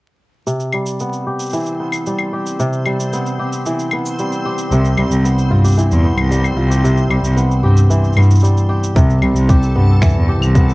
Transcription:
0.47 2.58 C3 medium
0.47 8.98 C4 medium
0.47 8.97 C6 medium
0.47 cabasa soft
0.60 cabasa soft
0.72 2.06 G3 soft
0.72 claves medium
0.86 cabasa medium
1.00 1.80 B3 medium
1.00 cabasa soft
1.13 cabasa soft
1.27 2.33 G4 medium
1.39 cabasa medium
1.42 cabasa soft
1.46 cabasa soft
1.49 cabasa soft
1.53 3.66 E3 medium
1.53 cabasa soft
1.56 cabasa soft
1.60 cabasa soft
1.63 cabasa soft
1.66 cabasa soft
1.80 3.13 B3 soft
1.92 cabasa medium
1.92 claves medium
2.06 2.86 G3 medium
2.06 cabasa soft
2.19 claves medium
2.33 3.39 G4 medium
2.46 cabasa medium
2.59 4.71 C3 medium
2.59 cabasa soft
2.73 cabasa soft
2.86 4.19 G3 medium
2.86 claves medium
3.00 cabasa medium
3.13 3.93 B3 medium
3.13 cabasa soft
3.26 cabasa soft
3.39 4.45 G4 medium
3.53 cabasa medium
3.66 5.77 E3 medium
3.66 cabasa medium
3.79 cabasa soft
3.91 5.24 B3 soft
3.91 claves medium
4.06 cabasa medium
4.19 4.98 G3 medium
4.19 cabasa medium
4.32 cabasa soft
4.45 5.64 G4 medium
4.58 cabasa medium
4.71 4.82 C2 medium
4.71 6.83 C3 medium
4.71 cabasa soft
4.85 cabasa soft
4.97 5.09 C2 medium
4.97 6.30 G3 medium
4.97 claves medium
5.11 5.22 C2 medium
5.11 cabasa medium
5.24 6.04 B3 medium
5.24 cabasa soft
5.38 cabasa soft
5.51 5.62 G2 medium
5.51 5.83 F4 medium
5.64 6.70 G4 soft
5.64 cabasa medium
5.68 cabasa soft
5.71 cabasa soft
5.75 7.89 E3 medium
5.75 cabasa soft
5.78 cabasa soft
5.91 6.13 E2 medium
5.91 cabasa soft
6.04 7.36 B3 medium
6.18 6.53 C2 medium
6.18 claves medium
6.31 7.10 G3 medium
6.31 cabasa medium
6.44 cabasa soft
6.44 claves soft
6.57 7.06 C2 loud
6.57 7.96 F4 medium
6.70 7.63 G4 medium
6.70 cabasa medium
6.84 8.95 C3 medium
6.84 cabasa medium
6.97 cabasa soft
7.10 7.21 C2 medium
7.10 8.42 G3 medium
7.10 claves medium
7.24 7.34 C2 medium
7.24 cabasa medium
7.37 8.17 B3 medium
7.37 cabasa soft
7.51 cabasa soft
7.63 7.74 G2 medium
7.63 8.69 G4 medium
7.77 cabasa medium
7.90 10.01 E3 medium
7.90 cabasa medium
8.04 cabasa soft
8.13 8.27 G2 medium
8.13 cabasa soft
8.13 claves medium
8.17 9.75 B3 soft
8.22 cabasa soft
8.31 cabasa medium
8.35 cabasa soft
8.40 9.22 G3 medium
8.40 cabasa soft
8.44 cabasa medium
8.57 cabasa soft
8.69 9.49 G4 medium
8.83 cabasa medium
8.96 9.07 C2 medium
8.96 10.74 C3 medium
8.96 10.74 A4 medium
8.96 10.74 A5 medium
8.96 kick medium
8.96 cabasa medium
9.10 cabasa soft
9.22 9.34 C2 medium
9.22 10.74 G3 medium
9.22 claves medium
9.36 9.47 C2 medium
9.36 cabasa medium
9.49 10.28 G4 medium
9.49 kick medium
9.49 cabasa soft
9.63 cabasa soft
9.75 9.86 G2 medium
9.75 10.55 B3 medium
10.02 10.74 E3 medium
10.02 finger snap medium
10.02 kick medium
10.02 cabasa medium
10.09 cabasa soft
10.15 10.37 E2 medium
10.29 10.74 G4 medium
10.42 10.74 C2 medium
10.42 cabasa medium
10.42 claves medium
10.55 10.74 B3 medium
10.55 kick medium
10.55 cabasa medium
10.69 cabasa soft

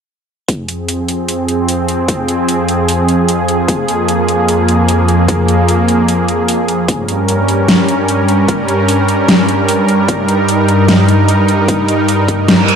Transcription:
0.48 6.85 F2 medium
0.48 6.85 F3 medium
0.48 3.65 C4 medium
0.48 6.84 G#4 medium
0.48 kick loud
0.48 closed hi-hat medium
0.69 closed hi-hat medium
0.89 closed hi-hat medium
1.08 closed hi-hat medium
1.28 closed hi-hat medium
1.48 closed hi-hat medium
1.68 closed hi-hat medium
1.88 closed hi-hat medium
2.08 kick loud
2.08 closed hi-hat medium
2.29 closed hi-hat medium
2.49 closed hi-hat medium
2.69 closed hi-hat soft
2.89 closed hi-hat medium
3.09 closed hi-hat soft
3.29 closed hi-hat medium
3.48 closed hi-hat soft
3.68 6.85 A#3 medium
3.68 kick loud
3.68 closed hi-hat medium
3.88 closed hi-hat soft
4.08 closed hi-hat medium
4.29 closed hi-hat soft
4.48 closed hi-hat medium
4.68 closed hi-hat soft
4.88 closed hi-hat medium
5.08 closed hi-hat soft
5.28 kick loud
5.28 closed hi-hat medium
5.48 closed hi-hat soft
5.69 closed hi-hat medium
5.88 closed hi-hat soft
6.08 closed hi-hat medium
6.28 closed hi-hat soft
6.48 closed hi-hat medium
6.68 closed hi-hat soft
6.88 12.76 G2 medium
6.88 12.76 G3 medium
6.88 10.05 C#4 medium
6.88 12.76 A#4 medium
6.88 kick loud
6.88 closed hi-hat medium
7.08 closed hi-hat medium
7.28 closed hi-hat medium
7.49 closed hi-hat medium
7.68 snare loud
7.68 closed hi-hat medium
7.88 closed hi-hat soft
8.08 closed hi-hat medium
8.28 closed hi-hat medium
8.48 kick loud
8.48 closed hi-hat medium
8.68 closed hi-hat soft
8.88 closed hi-hat medium
9.08 closed hi-hat medium
9.28 snare loud
9.28 closed hi-hat medium
9.48 closed hi-hat soft
9.69 closed hi-hat medium
9.88 closed hi-hat soft
10.08 12.76 D#4 medium
10.08 kick loud
10.08 closed hi-hat medium
10.28 closed hi-hat medium
10.48 closed hi-hat medium
10.68 closed hi-hat medium
10.88 snare loud
10.88 closed hi-hat medium
11.08 closed hi-hat medium
11.28 closed hi-hat medium
11.48 closed hi-hat medium
11.68 kick loud
11.68 closed hi-hat medium
11.88 closed hi-hat medium
12.08 closed hi-hat medium
12.28 kick medium
12.28 closed hi-hat medium
12.48 snare loud
12.48 closed hi-hat medium
12.48 reverse cymbal medium
12.68 closed hi-hat medium

